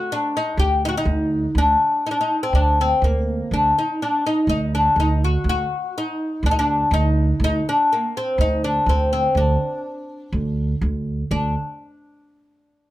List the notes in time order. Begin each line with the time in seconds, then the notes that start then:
Already playing: F#4
0.12 D4
0.37 D#4
0.57 D2 G4
0.85 D#4 F#4
0.97 D#4
1.05 D2
1.55 D2 D4
2.06 D#4
2.11 D4
2.21 D#4
2.43 C4
2.53 D2 D4
2.81 C4
3.02 D2 A#3
3.51 D2 D4
3.79 D#4
4.02 D4
4.26 D#4
4.47 D2 D#4
4.75 D4
4.96 D2 D#4
5.24 F#4
5.44 D2
5.49 F#4
5.98 D#4
6.43 D2 D4
6.51 D#4
6.59 D4
6.91 D2 D#4
7.40 D2
7.44 D#4
7.69 D4
7.93 A#3
8.17 C4
8.38 D2 D#4
8.64 D4
8.86 D2 C4
9.13 C4
9.35 D2 D4
10.33 D2
10.81 D2
11.31 D2 D4